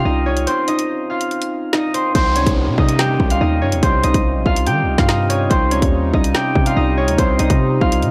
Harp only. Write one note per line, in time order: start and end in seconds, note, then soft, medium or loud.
0.00 0.26 C#4 medium
0.00 1.10 F4 medium
0.00 1.99 G4 medium
0.00 0.26 C#5 medium
0.00 1.09 F5 medium
0.00 1.18 G5 medium
0.05 0.68 D#4 medium
0.05 0.67 D#5 medium
0.26 0.53 C#4 medium
0.26 0.53 C#5 medium
0.47 1.94 C4 medium
0.47 1.94 C5 medium
0.68 1.74 D#4 medium
0.68 1.73 D#5 medium
1.10 3.31 F4 medium
1.10 2.76 F5 medium
1.73 2.79 D#4 medium
1.73 2.78 D#5 medium
1.94 2.15 C4 medium
1.94 2.14 C5 medium
2.15 2.42 C4 medium
2.15 2.42 C5 loud
2.36 3.62 C#4 medium
2.36 3.61 C#5 medium
2.79 3.41 D#4 medium
2.79 3.41 D#5 medium
2.99 4.67 G4 medium
2.99 4.54 G5 loud
3.31 4.47 F4 medium
3.31 4.46 F5 medium
3.41 4.04 D#4 medium
3.41 4.03 D#5 medium
3.62 3.89 C#4 medium
3.62 3.89 C#5 medium
3.83 5.35 C4 medium
3.83 5.35 C5 medium
4.04 5.09 D#4 medium
4.04 5.08 D#5 loud
4.46 4.99 F4 medium
4.46 4.98 F5 medium
4.66 6.35 G4 medium
4.66 6.22 G5 medium
4.98 6.67 F4 medium
4.98 6.65 F5 medium
5.08 6.14 D#4 medium
5.08 6.13 D#5 medium
5.29 5.56 C#4 medium
5.29 5.56 C#5 medium
5.50 5.77 C4 medium
5.50 5.77 C5 medium
5.71 6.98 C#4 medium
5.71 6.97 C#5 medium
6.14 6.77 D#4 medium
6.14 6.76 D#5 medium
6.34 8.11 G4 medium
6.34 7.90 G5 medium
6.66 7.81 F4 medium
6.66 7.81 F5 medium
6.77 7.39 D#4 medium
6.77 7.39 D#5 medium
6.97 7.24 C#4 medium
6.97 7.24 C#5 medium
7.18 8.11 C4 medium
7.18 8.11 C5 medium
7.39 8.11 D#4 medium
7.39 8.11 D#5 medium
7.81 8.11 F4 medium
7.81 8.11 F5 medium